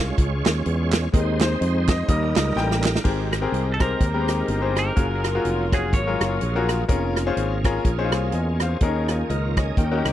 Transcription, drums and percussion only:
0.18 kick, closed hi-hat
0.46 snare, clap, closed hi-hat
0.66 closed hi-hat
0.92 snare, clap, closed hi-hat
1.14 kick, closed hi-hat
1.41 snare, clap, closed hi-hat
1.62 closed hi-hat
1.88 kick, snare, clap, closed hi-hat
2.08 kick, closed hi-hat
2.36 snare, clap, closed hi-hat
2.57 snare
2.71 snare
2.84 snare, clap
2.96 snare
3.05 kick, crash
3.33 cross-stick, closed hi-hat
3.54 closed hi-hat
3.80 kick, cross-stick, closed hi-hat
4.01 kick, closed hi-hat
4.28 cross-stick, closed hi-hat
4.48 closed hi-hat
4.76 cross-stick, closed hi-hat
4.96 kick, closed hi-hat
5.24 cross-stick, closed hi-hat
5.45 closed hi-hat
5.72 kick, cross-stick, closed hi-hat
5.93 kick, closed hi-hat
6.21 cross-stick, closed hi-hat
6.41 closed hi-hat
6.69 cross-stick, closed hi-hat
6.89 kick, closed hi-hat
7.16 cross-stick, closed hi-hat
7.37 closed hi-hat
7.64 kick, cross-stick, closed hi-hat
7.85 kick, closed hi-hat
8.12 cross-stick, closed hi-hat
8.32 closed hi-hat
8.60 cross-stick, closed hi-hat
8.81 kick, closed hi-hat
9.08 cross-stick, closed hi-hat
9.30 closed hi-hat
9.57 kick, cross-stick, closed hi-hat
9.77 kick, closed hi-hat
10.05 cross-stick, closed hi-hat

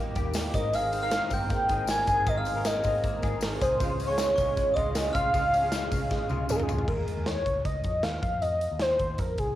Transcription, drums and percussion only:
0.15 kick, hi-hat pedal, open hi-hat, tambourine
0.34 snare, hi-hat pedal, open hi-hat, tambourine
0.54 kick, hi-hat pedal, open hi-hat, tambourine
0.73 hi-hat pedal, open hi-hat, tambourine
0.92 hi-hat pedal, open hi-hat, tambourine
1.11 snare, hi-hat pedal, open hi-hat, tambourine
1.30 kick, hi-hat pedal, open hi-hat, tambourine
1.50 kick, hi-hat pedal, open hi-hat, tambourine
1.69 kick, hi-hat pedal, open hi-hat, tambourine
1.87 snare, hi-hat pedal, open hi-hat, tambourine
2.07 kick, hi-hat pedal, open hi-hat, tambourine
2.26 kick, hi-hat pedal, open hi-hat, tambourine
2.45 hi-hat pedal, open hi-hat, tambourine
2.65 snare, hi-hat pedal, open hi-hat, tambourine
2.84 kick, hi-hat pedal, open hi-hat, tambourine
3.04 kick, hi-hat pedal, open hi-hat
3.22 kick, hi-hat pedal, open hi-hat, tambourine
3.41 snare, hi-hat pedal, open hi-hat, tambourine
3.61 kick, hi-hat pedal, open hi-hat, tambourine
3.80 kick, hi-hat pedal, open hi-hat, tambourine
4.00 hi-hat pedal, open hi-hat, tambourine
4.18 snare, hi-hat pedal, open hi-hat, tambourine
4.38 kick, hi-hat pedal, open hi-hat, tambourine
4.57 kick, hi-hat pedal, open hi-hat, tambourine
4.76 kick, hi-hat pedal, open hi-hat
4.95 snare, hi-hat pedal, open hi-hat, tambourine
5.15 kick, hi-hat pedal, open hi-hat, tambourine
5.34 kick, hi-hat pedal, open hi-hat, tambourine
5.54 hi-hat pedal, open hi-hat, tambourine
5.72 snare, hi-hat pedal, open hi-hat, tambourine
5.91 kick, hi-hat pedal, open hi-hat, tambourine
6.10 kick, snare, tambourine
6.29 high tom, tambourine
6.49 mid tom, tambourine
6.60 mid tom
6.69 floor tom, tambourine
6.78 floor tom
6.88 kick, crash
7.08 closed hi-hat
7.26 snare, closed hi-hat
7.46 kick, closed hi-hat
7.65 kick, closed hi-hat
7.84 kick, closed hi-hat
8.03 snare, closed hi-hat
8.23 kick, closed hi-hat
8.42 closed hi-hat
8.61 closed hi-hat
8.80 snare, closed hi-hat
8.99 kick, closed hi-hat
9.18 kick, closed hi-hat
9.38 kick, closed hi-hat

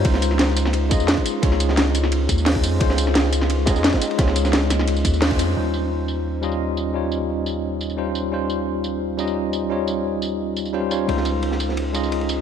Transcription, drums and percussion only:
0.05 kick, closed hi-hat, ride, ride bell
0.14 snare
0.22 closed hi-hat, ride, ride bell, tambourine
0.31 snare
0.39 snare, closed hi-hat, ride, ride bell
0.48 snare
0.57 closed hi-hat, ride, ride bell, tambourine
0.65 snare
0.73 closed hi-hat, ride, ride bell
0.91 kick, closed hi-hat, ride, ride bell, tambourine
1.00 tambourine
1.08 snare, closed hi-hat, ride, ride bell
1.17 kick, ride
1.25 closed hi-hat, ride, ride bell, tambourine
1.43 kick, closed hi-hat, ride, ride bell
1.52 snare
1.60 closed hi-hat, ride, ride bell, tambourine
1.69 snare
1.77 snare, closed hi-hat, ride, ride bell
1.95 closed hi-hat, ride, ride bell, tambourine
2.04 snare
2.12 closed hi-hat, ride, ride bell
2.29 kick, closed hi-hat, ride, ride bell, tambourine
2.38 tambourine
2.46 snare, closed hi-hat, open hi-hat, ride bell
2.55 kick
2.63 closed hi-hat, ride, ride bell, tambourine
2.80 kick, closed hi-hat, ride, ride bell
2.90 snare
2.98 closed hi-hat, ride, ride bell, tambourine
3.07 snare
3.15 snare, closed hi-hat, ride, ride bell
3.24 snare
3.33 closed hi-hat, ride, ride bell, tambourine
3.41 snare
3.50 closed hi-hat, ride, ride bell
3.66 kick, snare, closed hi-hat, ride, ride bell, tambourine
3.76 snare, tambourine
3.84 snare, closed hi-hat, ride, ride bell
3.92 kick, snare, ride
4.01 snare, closed hi-hat, ride bell, tambourine
4.11 ride
4.18 kick, snare, closed hi-hat, ride, ride bell
4.27 snare
4.35 closed hi-hat, ride, ride bell, tambourine
4.45 snare, tambourine
4.53 snare, closed hi-hat, ride, ride bell
4.70 snare, closed hi-hat, ride, ride bell, tambourine
4.79 snare
4.88 closed hi-hat, ride, ride bell
4.96 tambourine
5.05 kick, closed hi-hat, ride, ride bell, tambourine
5.14 tambourine
5.22 snare, closed hi-hat, open hi-hat, ride bell
5.31 kick
5.39 closed hi-hat, ride, ride bell, tambourine
5.74 tambourine
6.08 tambourine
6.43 tambourine
6.52 tambourine
6.77 tambourine
7.12 tambourine
7.46 tambourine
7.81 tambourine
7.90 tambourine
8.15 tambourine
8.50 tambourine
8.84 tambourine
9.19 tambourine
9.27 tambourine
9.53 tambourine
9.88 tambourine
10.22 tambourine
10.56 tambourine
10.65 tambourine
10.91 tambourine
11.09 ride
11.17 snare
11.25 ride, tambourine
11.42 ride
11.51 snare
11.60 ride, tambourine
11.69 snare
11.77 ride
11.94 ride, tambourine
12.03 tambourine
12.12 ride
12.21 ride
12.29 ride, tambourine

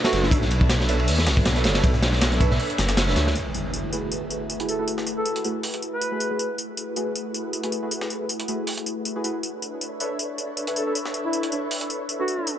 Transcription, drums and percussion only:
0.04 snare, ride
0.13 snare, ride, tambourine
0.23 snare
0.31 kick, ride, tambourine
0.42 snare
0.51 ride, tambourine
0.61 kick
0.69 snare, ride, tambourine
0.81 snare
0.89 ride, tambourine
1.00 ride
1.08 open hi-hat, tambourine
1.19 snare
1.27 snare, ride, tambourine
1.37 kick
1.45 snare, ride, tambourine
1.56 snare, closed hi-hat
1.64 snare, ride, tambourine
1.75 snare, ride
1.83 kick, ride, tambourine
1.94 snare
2.02 snare, ride, tambourine
2.13 snare
2.21 snare, ride, tambourine
2.32 snare, closed hi-hat
2.40 kick, ride, tambourine
2.51 snare
2.59 open hi-hat
2.70 closed hi-hat
2.78 snare, tambourine
2.89 snare, ride, tambourine
2.97 snare, ride, tambourine
3.08 snare
3.16 snare, ride, tambourine
3.27 snare
3.35 tambourine
3.54 tambourine
3.74 tambourine
3.92 tambourine
4.12 tambourine
4.30 tambourine
4.50 tambourine
4.60 closed hi-hat
4.69 tambourine
4.88 tambourine
4.98 snare
5.06 tambourine
5.25 tambourine
5.36 closed hi-hat
5.44 tambourine
5.63 open hi-hat
5.74 closed hi-hat
5.82 tambourine
6.01 tambourine
6.20 tambourine
6.39 tambourine
6.58 tambourine
6.77 tambourine
6.96 tambourine
7.15 tambourine
7.34 tambourine
7.53 tambourine
7.63 closed hi-hat
7.72 tambourine
7.91 tambourine
8.01 snare
8.10 tambourine
8.29 tambourine
8.40 closed hi-hat
8.48 tambourine
8.67 open hi-hat
8.77 closed hi-hat
8.86 tambourine
9.05 tambourine
9.24 tambourine
9.43 tambourine
9.62 tambourine
9.81 tambourine
10.00 tambourine
10.19 tambourine
10.38 tambourine
10.57 tambourine
10.67 closed hi-hat
10.76 tambourine
10.95 tambourine
11.05 snare
11.14 tambourine
11.33 tambourine
11.43 closed hi-hat
11.52 tambourine
11.71 open hi-hat
11.81 closed hi-hat
11.90 tambourine
12.09 tambourine
12.28 tambourine
12.47 tambourine

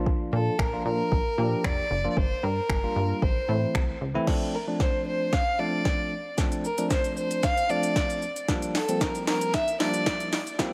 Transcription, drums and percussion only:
0.06 kick
0.59 finger snap, kick
1.12 kick
1.64 finger snap, kick
2.17 kick
2.69 finger snap, kick
3.22 kick
3.75 finger snap, kick
4.27 kick, snare, crash
4.80 kick, snare
5.33 kick, snare
5.85 kick, snare
6.38 kick, snare, shaker
6.52 closed hi-hat, shaker
6.65 shaker
6.78 closed hi-hat, shaker
6.91 kick, snare, shaker
7.04 closed hi-hat, shaker
7.17 shaker
7.31 closed hi-hat, shaker
7.43 kick, snare, shaker
7.57 closed hi-hat, shaker
7.70 shaker
7.83 closed hi-hat, shaker
7.96 kick, snare, shaker
8.10 closed hi-hat, shaker
8.22 shaker
8.36 closed hi-hat, shaker
8.48 kick, snare, shaker
8.62 closed hi-hat, shaker
8.75 snare, open hi-hat, shaker
8.89 closed hi-hat, shaker
9.01 kick, snare, shaker
9.15 closed hi-hat, shaker
9.27 snare, open hi-hat, shaker
9.41 closed hi-hat, shaker
9.54 kick, snare, shaker
9.68 closed hi-hat, shaker
9.80 snare, open hi-hat, shaker
9.94 closed hi-hat, shaker
10.06 kick, snare, shaker
10.20 closed hi-hat, shaker
10.33 snare, open hi-hat, shaker
10.47 closed hi-hat, shaker
10.59 kick, snare, shaker

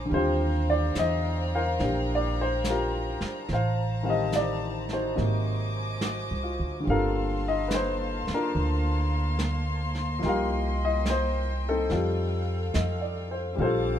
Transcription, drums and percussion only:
0.11 brush sweep
0.95 snare, hi-hat pedal
1.79 brush sweep, snare
2.64 snare, hi-hat pedal
3.21 snare
3.49 brush sweep, snare
4.32 snare, hi-hat pedal
4.89 snare
5.18 brush sweep, snare
6.01 snare, hi-hat pedal
6.86 brush sweep
7.71 snare, hi-hat pedal
8.27 snare
8.55 brush sweep
9.39 snare, hi-hat pedal
9.95 snare
10.23 brush sweep, snare
11.06 snare, hi-hat pedal
11.90 brush sweep, snare
12.74 snare, hi-hat pedal
13.57 brush sweep

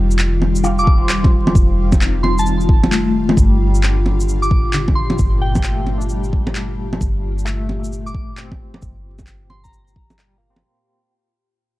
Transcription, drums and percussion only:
0.11 shaker
0.19 clap, shaker
0.42 low bongo
0.55 shaker
0.64 shaker
0.79 shaker
0.87 kick
1.09 clap, shaker
1.24 kick, low bongo
1.47 low bongo
1.55 kick, shaker
1.92 kick, low bongo, shaker
2.01 clap, shaker
2.24 low bongo
2.38 shaker
2.46 shaker
2.61 shaker
2.69 kick
2.84 low bongo
2.92 clap, shaker
3.29 low bongo
3.37 kick, shaker
3.75 shaker
3.83 clap, shaker
4.06 low bongo
4.20 shaker
4.29 shaker
4.43 shaker
4.51 kick
4.73 clap, shaker
4.88 kick, low bongo
5.10 low bongo
5.18 kick, shaker
5.55 kick, low bongo, shaker
5.63 clap, shaker
5.87 low bongo
6.01 shaker
6.09 shaker
6.24 shaker
6.33 kick
6.47 low bongo
6.55 clap, shaker
6.93 low bongo
7.01 kick, shaker
7.39 shaker
7.47 clap, shaker
7.69 low bongo
7.84 shaker
7.93 shaker
8.07 shaker
8.14 kick
8.37 clap, shaker
8.52 kick, low bongo
8.74 low bongo
8.82 kick, shaker
9.19 kick, low bongo, shaker
9.27 clap, shaker
9.50 low bongo
9.64 kick, shaker
9.73 shaker
9.88 shaker
9.96 kick
10.10 low bongo, shaker
10.19 clap, shaker
10.56 low bongo

